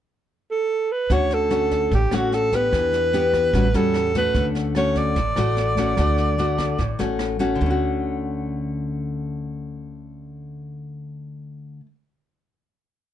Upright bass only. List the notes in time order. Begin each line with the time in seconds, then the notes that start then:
1.10 D2
1.92 A1
2.12 A1
2.73 E2
3.53 A1
3.74 E2
4.35 D2
5.16 A1
5.38 A1
5.98 D2
6.79 A1
7.00 A1
7.61 D2